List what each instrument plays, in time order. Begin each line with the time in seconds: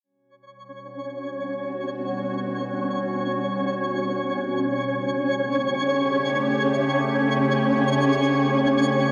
0.03 ambient pad B2 G3 F#4, synth texture C#4 C#5
4.61 ambient pad C#3 A3 G4